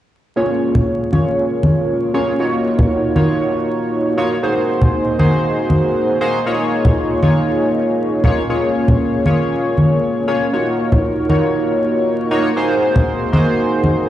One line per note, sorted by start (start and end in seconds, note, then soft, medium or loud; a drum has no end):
0.36 1.09 A#3 medium
0.36 1.10 C#4 medium
0.36 1.10 F4 medium
0.36 1.10 G#4 medium
0.36 5.21 A#4 medium
0.36 1.10 C#5 medium
0.75 low conga medium
1.02 2.40 F5 medium
1.12 2.11 A#3 medium
1.12 2.11 C#4 medium
1.12 2.11 F4 medium
1.12 2.11 G#4 medium
1.12 2.12 C#5 medium
1.12 high conga medium
1.28 3.20 C#6 medium
1.63 high conga medium
2.14 2.32 A#3 loud
2.14 2.32 C#4 medium
2.14 2.32 F4 medium
2.14 2.32 G#4 medium
2.14 2.32 C#5 loud
2.39 3.13 A#3 medium
2.39 3.13 D#4 medium
2.39 5.25 D#4 medium
2.39 3.13 F4 medium
2.39 3.13 F#4 medium
2.39 3.13 C#5 medium
2.79 low conga medium
3.15 4.14 A#3 medium
3.15 4.15 D#4 medium
3.15 4.15 F4 medium
3.15 4.15 F#4 medium
3.15 4.15 C#5 medium
3.15 high conga medium
4.17 4.35 A#3 medium
4.17 4.35 D#4 medium
4.17 4.35 F4 medium
4.17 4.35 F#4 medium
4.17 4.36 C#5 loud
4.42 5.16 A#3 medium
4.42 5.16 D#4 medium
4.42 5.16 F#4 medium
4.42 9.31 G#4 medium
4.42 5.16 G#4 medium
4.42 5.17 C5 medium
4.82 low conga medium
5.04 9.18 D#5 medium
5.19 6.18 A#3 medium
5.19 6.18 D#4 medium
5.19 6.18 F#4 medium
5.19 6.18 G#4 medium
5.19 6.18 C5 medium
5.19 high conga medium
5.35 7.28 A#5 medium
5.35 7.28 C6 medium
5.70 high conga medium
6.21 6.39 A#3 medium
6.21 6.39 D#4 medium
6.21 6.39 F#4 medium
6.21 6.39 G#4 medium
6.21 6.39 C5 loud
6.46 7.20 A#3 medium
6.46 9.31 C#4 medium
6.46 7.20 D#4 medium
6.46 7.20 F4 medium
6.46 7.20 G#4 medium
6.46 7.20 C#5 medium
6.85 low conga medium
7.22 8.21 A#3 medium
7.22 8.21 D#4 medium
7.22 8.21 F4 medium
7.22 8.22 G#4 medium
7.22 8.22 C#5 medium
7.22 high conga medium
7.38 10.53 F5 medium
8.24 8.42 A#3 medium
8.24 8.42 D#4 medium
8.24 8.42 F4 medium
8.24 8.42 G#4 medium
8.24 8.42 C#5 loud
8.24 low conga medium
8.49 9.23 A#3 medium
8.49 9.23 C#4 medium
8.49 9.23 F4 medium
8.49 9.23 G#4 medium
8.49 13.38 A#4 medium
8.49 9.23 C#5 medium
8.88 low conga medium
9.26 10.25 A#3 medium
9.26 10.25 C#4 medium
9.26 10.25 F4 medium
9.26 10.25 G#4 medium
9.26 10.25 C#5 medium
9.26 high conga medium
9.42 11.22 C#6 medium
9.78 high conga medium
10.27 10.46 A#3 medium
10.27 10.46 C#4 medium
10.27 10.46 F4 medium
10.27 10.46 G#4 medium
10.27 10.46 C#5 loud
10.53 11.26 A#3 medium
10.53 11.26 D#4 medium
10.53 13.38 D#4 medium
10.53 11.27 F4 medium
10.53 11.27 F#4 medium
10.53 11.27 C#5 medium
10.92 low conga medium
11.29 12.28 A#3 medium
11.29 12.28 D#4 medium
11.29 12.28 F4 medium
11.29 12.28 F#4 medium
11.29 12.28 C#5 medium
11.29 high conga medium
12.31 12.49 A#3 medium
12.31 12.49 D#4 medium
12.31 12.49 F4 medium
12.31 12.49 F#4 medium
12.31 12.49 C#5 loud
12.56 13.30 A#3 medium
12.56 13.30 D#4 medium
12.56 13.30 F#4 medium
12.56 14.09 G#4 medium
12.56 13.30 G#4 medium
12.56 13.30 C5 medium
12.96 14.09 C6 medium
12.96 low conga medium
13.32 14.09 A#3 medium
13.32 14.09 D#4 medium
13.32 14.09 F#4 medium
13.32 14.09 G#4 medium
13.32 14.09 C5 medium
13.32 high conga medium
13.36 14.09 D#5 medium
13.49 14.09 A#5 medium
13.84 high conga medium